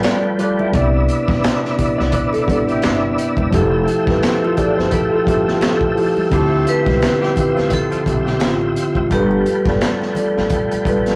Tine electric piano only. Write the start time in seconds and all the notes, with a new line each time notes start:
Already playing: G3 F4 A4 A#4 B4 D5
0.38 G3 F4 A4
0.42 D5
0.72 C3 B3 E4
0.76 D5
1.77 C3 B3 E4
1.81 D5
2.46 C3 B3 D4
2.50 D5
2.55 E4
3.50 F3 E4 G4
3.55 A4
4.05 F3 E4 G4
4.09 B4
4.55 F3 E4 G4
4.59 G#4
4.66 A4
5.25 F3 G4 E5
5.29 A4
5.95 F3 E4 G4
5.99 A4
6.30 D3 C4 E4 F4 G4
7.35 D3 C4 E4 F4
7.39 G4
8.05 D3 C4 F4 E5
8.09 G4
9.09 G3 F4 A4
9.14 B4
9.64 G3 F4 A4
9.69 D5
10.14 G3 F4 A4
10.19 D5
10.84 G3 F4 A4 B4